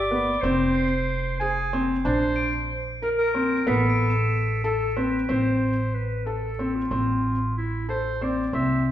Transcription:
0.00 0.40 G1 medium
0.00 0.42 D5 medium
0.00 0.28 D7 soft
0.00 0.47 G7 soft
0.00 0.65 A7 soft
0.11 0.33 B3 medium
0.41 2.02 F1 medium
0.41 0.87 C4 medium
0.41 1.39 C5 medium
0.75 1.58 C7 soft
1.40 1.63 G#4 medium
1.40 1.85 G#5 loud
1.73 1.95 C4 medium
2.05 3.64 A#1 medium
2.05 2.49 D4 medium
2.05 2.71 C5 loud
2.36 3.19 D7 medium
3.02 3.09 A#4 medium
3.02 3.24 A#4 medium
3.18 3.68 A#4 medium
3.34 3.56 C4 medium
3.67 5.26 A1 medium
3.67 4.10 B3 medium
3.67 4.64 A4 medium
3.67 4.50 B6 medium
3.89 4.69 D7 soft
4.10 4.87 E7 soft
4.64 4.86 A4 medium
4.64 4.98 A4 medium
4.96 5.18 C4 medium
4.96 5.30 B4 medium
5.29 6.88 A1 medium
5.29 5.72 C4 medium
5.29 5.95 C5 medium
5.94 6.28 B4 medium
6.26 6.77 A4 medium
6.26 6.48 A4 medium
6.59 6.81 C4 medium
6.75 7.56 F4 medium
6.91 8.50 A1 medium
6.91 7.35 C4 medium
7.57 7.87 E4 medium
7.89 8.10 A4 medium
7.89 8.24 C5 medium
8.21 8.43 C4 medium
8.21 8.54 D5 medium
8.53 8.92 C2 medium
8.53 8.92 C4 medium
8.53 8.89 E5 medium

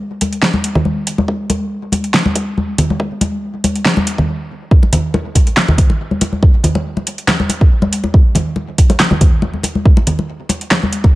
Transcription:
0.21 closed hi-hat medium
0.21 high conga medium
0.33 closed hi-hat soft
0.42 snare loud
0.54 high conga medium
0.64 closed hi-hat medium
0.75 kick loud
0.75 low conga medium
0.85 high conga medium
1.07 closed hi-hat medium
1.18 high conga loud
1.28 kick loud
1.50 closed hi-hat medium
1.50 high conga medium
1.92 kick medium
1.92 closed hi-hat medium
1.92 high conga medium
2.04 closed hi-hat soft
2.14 snare loud
2.26 high conga loud
2.35 kick loud
2.35 closed hi-hat medium
2.57 high conga medium
2.78 closed hi-hat medium
2.78 low conga loud
2.90 high conga medium
3.00 kick loud
3.21 closed hi-hat medium
3.21 high conga loud
3.64 closed hi-hat medium
3.64 high conga medium
3.75 closed hi-hat soft
3.85 snare loud
3.97 high conga loud
4.07 closed hi-hat medium
4.18 kick loud
4.18 low conga medium
4.71 kick loud
4.83 muted conga medium
4.93 closed hi-hat medium
4.93 low conga loud
5.14 muted conga medium
5.35 kick medium
5.35 closed hi-hat medium
5.35 muted conga medium
5.47 closed hi-hat soft
5.57 snare loud
5.57 clap medium
5.68 muted conga medium
5.68 high conga medium
5.68 low conga loud
5.78 kick loud
5.78 closed hi-hat medium
5.78 low conga medium
5.90 muted conga medium
6.11 high conga medium
6.21 closed hi-hat medium
6.21 muted conga medium
6.32 high conga medium
6.43 kick loud
6.43 muted conga soft
6.64 closed hi-hat medium
6.64 low conga loud
6.75 muted conga medium
6.97 muted conga soft
7.07 closed hi-hat medium
7.18 closed hi-hat soft
7.28 snare loud
7.28 clap medium
7.28 muted conga medium
7.40 high conga loud
7.49 closed hi-hat medium
7.49 muted conga medium
7.61 kick loud
7.82 muted conga medium
7.82 high conga medium
7.93 closed hi-hat medium
8.04 muted conga medium
8.04 high conga medium
8.14 kick loud
8.35 closed hi-hat medium
8.35 muted conga medium
8.35 low conga loud
8.56 muted conga medium
8.78 kick medium
8.78 closed hi-hat medium
8.90 closed hi-hat soft
8.90 muted conga medium
9.00 snare loud
9.00 clap medium
9.11 muted conga medium
9.11 high conga medium
9.11 low conga loud
9.21 kick loud
9.21 closed hi-hat medium
9.21 low conga medium
9.42 muted conga medium
9.54 high conga medium
9.63 closed hi-hat medium
9.63 muted conga medium
9.75 high conga medium
9.85 kick loud
9.97 muted conga medium
10.07 closed hi-hat medium
10.07 low conga medium
10.19 muted conga soft
10.49 closed hi-hat medium
10.49 muted conga medium
10.61 closed hi-hat soft
10.71 snare loud
10.71 clap medium
10.71 muted conga medium
10.83 high conga medium
10.93 closed hi-hat medium
11.04 kick loud
11.04 muted conga medium

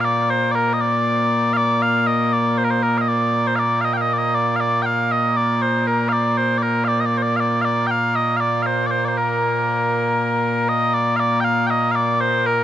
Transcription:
0.00 12.64 A#2 medium
0.00 12.64 A#3 medium
0.00 0.05 F5 loud
0.05 0.30 D5 loud
0.30 0.52 C5 loud
0.52 0.73 A#4 medium
0.52 0.55 D5 medium
0.73 0.81 D#5 medium
0.81 1.53 D5 loud
1.53 1.82 D5 loud
1.53 1.57 F5 loud
1.82 2.07 F5 loud
2.07 2.33 D#5 loud
2.33 2.58 D5 loud
2.58 2.64 C5 medium
2.64 2.70 A#4 medium
2.70 2.83 C5 medium
2.83 2.98 A#4 medium
2.98 3.08 D#5 medium
2.98 3.01 F5 medium
3.08 3.47 D5 loud
3.47 3.56 C5 medium
3.56 3.81 D5 medium
3.56 3.59 F5 medium
3.81 3.93 D#5 medium
3.81 3.85 F5 medium
3.93 4.01 F5 medium
3.93 3.97 G5 medium
4.01 4.13 D#5 loud
4.13 4.18 D5 medium
4.18 4.35 D#5 loud
4.35 4.56 D5 medium
4.56 4.60 F5 loud
4.60 4.82 D5 loud
4.82 5.12 F5 loud
4.82 4.86 G5 loud
5.12 5.37 D#5 medium
5.37 5.62 D5 loud
5.62 5.87 C5 medium
5.87 6.09 A#4 medium
6.09 6.37 D5 loud
6.09 6.12 F5 loud
6.37 6.58 C5 loud
6.58 6.63 D5 medium
6.63 6.84 A#4 medium
6.84 7.00 D5 loud
6.84 6.88 F5 loud
7.00 7.06 D#5 medium
7.06 7.18 D5 loud
7.18 7.22 C5 medium
7.22 7.36 D5 medium
7.36 7.61 D5 medium
7.36 7.40 F5 medium
7.61 7.87 D5 loud
7.61 7.65 F5 loud
7.87 8.16 F5 loud
7.87 7.91 G5 loud
8.16 8.37 D#5 loud
8.37 8.62 D5 loud
8.37 8.40 F5 loud
8.62 8.87 C5 medium
8.62 8.66 F5 medium
8.87 8.91 D5 medium
8.91 9.05 C5 medium
9.05 9.17 C5 medium
9.05 9.08 D5 medium
9.17 10.69 A#4 medium
10.69 10.94 D#5 loud
10.94 11.16 D5 loud
11.16 11.40 D5 loud
11.16 11.20 F5 loud
11.40 11.67 F5 loud
11.40 11.44 G5 loud
11.67 11.91 D#5 loud
11.67 11.70 G5 loud
11.91 11.95 F5 medium
11.95 12.21 D5 medium
12.21 12.46 C5 loud
12.46 12.64 A#4 loud

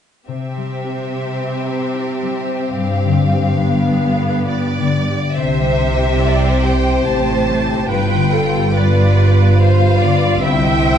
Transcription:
0.27 2.80 C3 soft
0.27 2.73 C3 soft
0.27 3.55 C4 soft
0.27 5.12 G4 soft
0.27 2.73 E5 soft
0.57 2.21 G3 soft
0.84 2.48 G4 soft
1.13 1.66 C5 soft
1.40 1.87 B4 soft
1.67 2.80 C5 soft
1.94 2.80 E4 soft
2.22 5.58 G3 soft
2.49 3.31 G4 soft
2.76 5.12 G2 soft
2.76 5.40 G2 soft
2.76 4.43 F5 medium
3.05 4.77 D3 soft
3.32 5.08 G4 soft
3.60 5.16 B3 soft
3.60 4.17 B4 soft
3.89 4.38 A4 soft
4.18 5.40 B4 soft
4.47 5.39 F4 soft
4.47 5.32 D5 medium
4.78 5.40 D3 soft
5.09 6.01 G4 soft
5.35 7.03 C2 soft
5.35 7.02 C3 soft
5.35 7.93 C3 soft
5.35 7.84 C4 soft
5.35 7.85 G4 soft
5.35 7.86 G4 soft
5.35 6.17 C5 soft
5.35 7.86 C5 soft
5.35 6.63 E5 medium
5.60 7.48 G3 soft
5.81 7.70 E4 soft
6.02 7.28 G4 soft
6.22 6.65 C5 soft
6.22 6.64 D5 soft
6.45 6.86 E5 soft
6.64 7.89 C5 soft
6.64 7.07 C5 soft
6.64 7.06 G5 medium
6.87 7.93 E5 soft
7.08 7.90 A1 soft
7.08 7.90 A2 soft
7.08 7.93 C5 soft
7.08 7.90 A5 medium
7.30 8.54 G4 soft
7.50 10.64 G3 soft
7.71 7.94 E4 soft
7.89 10.38 G1 soft
7.89 10.38 G2 soft
7.89 10.46 G2 soft
7.89 10.38 B3 medium
7.89 8.72 F4 soft
7.89 10.38 F4 soft
7.89 8.30 B4 soft
7.89 8.71 B4 soft
7.89 8.72 G5 medium
8.13 10.01 D3 soft
8.31 10.22 F4 soft
8.31 8.73 A4 soft
8.55 9.81 G4 soft
8.73 9.57 F4 soft
8.73 9.56 B4 soft
8.73 9.57 B4 soft
8.73 9.18 B4 soft
8.73 9.59 D5 medium
8.97 9.39 F5 soft
9.19 9.60 B4 soft
9.41 10.46 F5 soft
9.57 10.40 F4 medium
9.57 10.41 B4 soft
9.57 10.46 B4 soft
9.57 10.00 C5 soft
9.57 10.42 F5 medium
9.82 10.98 G4 soft
10.00 10.46 D3 soft
10.00 10.41 D5 medium
10.24 10.46 F4 soft
10.42 10.98 C2 soft
10.42 10.98 C2 medium
10.42 10.98 C3 soft
10.42 10.98 C4 medium
10.42 10.98 E4 medium
10.42 10.98 E4 soft
10.42 10.98 C5 medium
10.42 10.98 E5 medium
10.42 10.98 G5 medium
10.65 10.98 G3 soft
10.85 10.98 E4 soft

